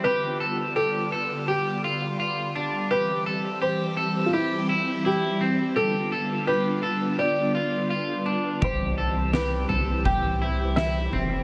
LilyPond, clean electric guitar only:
\new Staff \with { instrumentName = "Clean electric guitar" } { \time 4/4 \key c \major \tempo 4 = 84 g'8 a'8 g'8 a'8 g'8 f'8 f'8 d'8 | g'8 a'8 g'8 a'8 g'8 e'8 e'8 c'8 | g'8 a'8 g'8 a'8 g'8 f'8 f'8 d'8 | g'8 a'8 g'8 a'8 g'8 e'8 e'8 c'8 | }